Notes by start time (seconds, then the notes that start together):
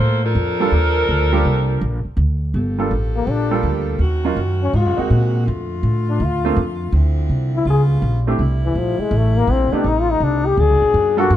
Already playing: A#3 F4 A4 C5
0.00 A2
0.23 F3 D4 A4 A#4
0.35 F2
0.60 G3 A#3 D4 F4 A4
0.72 D#2
1.09 D2
1.32 G3 A#3 D4 F4 G4
1.45 C2
1.81 A#1
2.05 muted upright bass stroke
2.17 D2
2.54 G1 F3 A#3 G4 A4
2.78 G3 A#3 D4 F4 A4
2.91 A1
3.16 A#3
3.27 A#1 D4
3.51 G3 A#3 D4 F4 A4
3.63 D2
3.99 D#2 D#3 C#4 F#4
4.25 F#3 A#3 C#4 D#4 F4
4.37 F#2
4.63 C#4
4.73 G#2 C3 G#3 F4 F#4
4.86 F#2
4.97 D#2 G#3 A#3 C4 D#4 F#4
5.10 A#2
5.46 F2 D3 A3 F4
5.83 A2
6.10 D4
6.20 D2
6.25 F4
6.45 A3 A#3 C4 D4 F4
6.56 F2
6.92 D2 D3 F3 C4 E4
7.29 C2
7.56 E4
7.65 C#2 C#3 G3 B3 F4
7.70 G#4
8.02 A#1
8.27 A3 C4 D4 E4 G4
8.39 C2 C3 A3 E4
8.65 E3
8.75 A#1 F3
8.99 G#3, muted upright bass stroke
9.11 A1
9.17 A3
9.37 A#3
9.47 A#1
9.52 C4
9.72 A3 B3 C4 D4 D#4 G4, muted upright bass stroke
9.84 A1 A3 D#4
10.01 F4
10.12 D#4
10.20 C2 D4
10.46 G4
10.57 D2 F#3 A#3 D4 G#4
10.70 C2
10.82 A#1
10.94 F#2
11.17 G3 A#3 D4 F4 F#4 A4
11.30 G2 F3 A#3 G4 A4